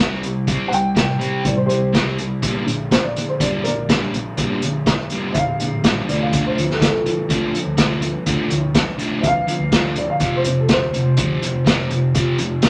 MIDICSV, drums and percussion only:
0, 0, Header, 1, 2, 480
1, 0, Start_track
1, 0, Key_signature, -1, "major"
1, 0, Tempo, 486618
1, 464, Time_signature, 4, 2, 24, 8
1, 12521, End_track
2, 0, Start_track
2, 0, Title_t, "Drums"
2, 227, Note_on_c, 9, 42, 68
2, 326, Note_off_c, 9, 42, 0
2, 466, Note_on_c, 9, 36, 106
2, 468, Note_on_c, 9, 42, 83
2, 565, Note_off_c, 9, 36, 0
2, 566, Note_off_c, 9, 42, 0
2, 714, Note_on_c, 9, 42, 61
2, 812, Note_off_c, 9, 42, 0
2, 949, Note_on_c, 9, 36, 105
2, 950, Note_on_c, 9, 42, 82
2, 956, Note_on_c, 9, 38, 108
2, 1047, Note_off_c, 9, 36, 0
2, 1048, Note_off_c, 9, 42, 0
2, 1055, Note_off_c, 9, 38, 0
2, 1194, Note_on_c, 9, 42, 66
2, 1293, Note_off_c, 9, 42, 0
2, 1429, Note_on_c, 9, 42, 87
2, 1430, Note_on_c, 9, 36, 103
2, 1528, Note_off_c, 9, 42, 0
2, 1529, Note_off_c, 9, 36, 0
2, 1673, Note_on_c, 9, 42, 61
2, 1771, Note_off_c, 9, 42, 0
2, 1912, Note_on_c, 9, 36, 108
2, 1917, Note_on_c, 9, 42, 89
2, 1924, Note_on_c, 9, 38, 106
2, 2011, Note_off_c, 9, 36, 0
2, 2016, Note_off_c, 9, 42, 0
2, 2023, Note_off_c, 9, 38, 0
2, 2154, Note_on_c, 9, 42, 68
2, 2252, Note_off_c, 9, 42, 0
2, 2391, Note_on_c, 9, 36, 101
2, 2393, Note_on_c, 9, 42, 90
2, 2490, Note_off_c, 9, 36, 0
2, 2491, Note_off_c, 9, 42, 0
2, 2640, Note_on_c, 9, 42, 67
2, 2738, Note_off_c, 9, 42, 0
2, 2874, Note_on_c, 9, 36, 104
2, 2877, Note_on_c, 9, 42, 93
2, 2884, Note_on_c, 9, 38, 107
2, 2972, Note_off_c, 9, 36, 0
2, 2975, Note_off_c, 9, 42, 0
2, 2982, Note_off_c, 9, 38, 0
2, 3121, Note_on_c, 9, 42, 76
2, 3220, Note_off_c, 9, 42, 0
2, 3355, Note_on_c, 9, 36, 104
2, 3359, Note_on_c, 9, 42, 96
2, 3453, Note_off_c, 9, 36, 0
2, 3458, Note_off_c, 9, 42, 0
2, 3596, Note_on_c, 9, 42, 73
2, 3695, Note_off_c, 9, 42, 0
2, 3837, Note_on_c, 9, 36, 111
2, 3840, Note_on_c, 9, 42, 99
2, 3847, Note_on_c, 9, 38, 112
2, 3935, Note_off_c, 9, 36, 0
2, 3938, Note_off_c, 9, 42, 0
2, 3945, Note_off_c, 9, 38, 0
2, 4083, Note_on_c, 9, 42, 69
2, 4182, Note_off_c, 9, 42, 0
2, 4314, Note_on_c, 9, 42, 90
2, 4318, Note_on_c, 9, 36, 104
2, 4413, Note_off_c, 9, 42, 0
2, 4417, Note_off_c, 9, 36, 0
2, 4555, Note_on_c, 9, 42, 68
2, 4654, Note_off_c, 9, 42, 0
2, 4796, Note_on_c, 9, 36, 106
2, 4796, Note_on_c, 9, 42, 87
2, 4803, Note_on_c, 9, 38, 101
2, 4894, Note_off_c, 9, 36, 0
2, 4895, Note_off_c, 9, 42, 0
2, 4902, Note_off_c, 9, 38, 0
2, 5029, Note_on_c, 9, 42, 66
2, 5127, Note_off_c, 9, 42, 0
2, 5271, Note_on_c, 9, 42, 86
2, 5276, Note_on_c, 9, 36, 113
2, 5370, Note_off_c, 9, 42, 0
2, 5374, Note_off_c, 9, 36, 0
2, 5522, Note_on_c, 9, 42, 64
2, 5620, Note_off_c, 9, 42, 0
2, 5759, Note_on_c, 9, 36, 105
2, 5759, Note_on_c, 9, 42, 87
2, 5766, Note_on_c, 9, 38, 109
2, 5858, Note_off_c, 9, 36, 0
2, 5858, Note_off_c, 9, 42, 0
2, 5864, Note_off_c, 9, 38, 0
2, 6006, Note_on_c, 9, 42, 63
2, 6105, Note_off_c, 9, 42, 0
2, 6240, Note_on_c, 9, 36, 107
2, 6241, Note_on_c, 9, 42, 86
2, 6339, Note_off_c, 9, 36, 0
2, 6339, Note_off_c, 9, 42, 0
2, 6490, Note_on_c, 9, 42, 70
2, 6589, Note_off_c, 9, 42, 0
2, 6613, Note_on_c, 9, 38, 32
2, 6712, Note_off_c, 9, 38, 0
2, 6721, Note_on_c, 9, 36, 114
2, 6726, Note_on_c, 9, 42, 98
2, 6732, Note_on_c, 9, 38, 113
2, 6820, Note_off_c, 9, 36, 0
2, 6824, Note_off_c, 9, 42, 0
2, 6831, Note_off_c, 9, 38, 0
2, 6965, Note_on_c, 9, 42, 74
2, 7064, Note_off_c, 9, 42, 0
2, 7199, Note_on_c, 9, 36, 106
2, 7199, Note_on_c, 9, 42, 89
2, 7297, Note_off_c, 9, 36, 0
2, 7298, Note_off_c, 9, 42, 0
2, 7443, Note_on_c, 9, 42, 71
2, 7542, Note_off_c, 9, 42, 0
2, 7670, Note_on_c, 9, 42, 93
2, 7676, Note_on_c, 9, 36, 115
2, 7677, Note_on_c, 9, 38, 108
2, 7768, Note_off_c, 9, 42, 0
2, 7775, Note_off_c, 9, 36, 0
2, 7775, Note_off_c, 9, 38, 0
2, 7910, Note_on_c, 9, 42, 69
2, 8009, Note_off_c, 9, 42, 0
2, 8150, Note_on_c, 9, 42, 92
2, 8152, Note_on_c, 9, 36, 108
2, 8249, Note_off_c, 9, 42, 0
2, 8251, Note_off_c, 9, 36, 0
2, 8388, Note_on_c, 9, 42, 66
2, 8487, Note_off_c, 9, 42, 0
2, 8626, Note_on_c, 9, 42, 90
2, 8628, Note_on_c, 9, 36, 111
2, 8633, Note_on_c, 9, 38, 106
2, 8725, Note_off_c, 9, 42, 0
2, 8726, Note_off_c, 9, 36, 0
2, 8732, Note_off_c, 9, 38, 0
2, 8869, Note_on_c, 9, 42, 67
2, 8967, Note_off_c, 9, 42, 0
2, 9108, Note_on_c, 9, 36, 110
2, 9108, Note_on_c, 9, 42, 84
2, 9206, Note_off_c, 9, 42, 0
2, 9207, Note_off_c, 9, 36, 0
2, 9351, Note_on_c, 9, 42, 66
2, 9450, Note_off_c, 9, 42, 0
2, 9587, Note_on_c, 9, 36, 112
2, 9587, Note_on_c, 9, 42, 88
2, 9594, Note_on_c, 9, 38, 116
2, 9685, Note_off_c, 9, 36, 0
2, 9686, Note_off_c, 9, 42, 0
2, 9693, Note_off_c, 9, 38, 0
2, 9820, Note_on_c, 9, 42, 67
2, 9919, Note_off_c, 9, 42, 0
2, 10059, Note_on_c, 9, 42, 82
2, 10064, Note_on_c, 9, 36, 107
2, 10158, Note_off_c, 9, 42, 0
2, 10163, Note_off_c, 9, 36, 0
2, 10301, Note_on_c, 9, 42, 69
2, 10400, Note_off_c, 9, 42, 0
2, 10540, Note_on_c, 9, 42, 92
2, 10545, Note_on_c, 9, 36, 112
2, 10547, Note_on_c, 9, 38, 106
2, 10639, Note_off_c, 9, 42, 0
2, 10643, Note_off_c, 9, 36, 0
2, 10646, Note_off_c, 9, 38, 0
2, 10790, Note_on_c, 9, 42, 73
2, 10889, Note_off_c, 9, 42, 0
2, 11016, Note_on_c, 9, 42, 95
2, 11023, Note_on_c, 9, 36, 115
2, 11115, Note_off_c, 9, 42, 0
2, 11122, Note_off_c, 9, 36, 0
2, 11269, Note_on_c, 9, 42, 72
2, 11367, Note_off_c, 9, 42, 0
2, 11503, Note_on_c, 9, 36, 111
2, 11507, Note_on_c, 9, 42, 97
2, 11514, Note_on_c, 9, 38, 113
2, 11601, Note_off_c, 9, 36, 0
2, 11605, Note_off_c, 9, 42, 0
2, 11612, Note_off_c, 9, 38, 0
2, 11743, Note_on_c, 9, 42, 76
2, 11841, Note_off_c, 9, 42, 0
2, 11981, Note_on_c, 9, 36, 109
2, 11982, Note_on_c, 9, 42, 99
2, 12080, Note_off_c, 9, 36, 0
2, 12081, Note_off_c, 9, 42, 0
2, 12215, Note_on_c, 9, 42, 72
2, 12314, Note_off_c, 9, 42, 0
2, 12449, Note_on_c, 9, 42, 93
2, 12456, Note_on_c, 9, 38, 109
2, 12457, Note_on_c, 9, 36, 108
2, 12521, Note_off_c, 9, 36, 0
2, 12521, Note_off_c, 9, 38, 0
2, 12521, Note_off_c, 9, 42, 0
2, 12521, End_track
0, 0, End_of_file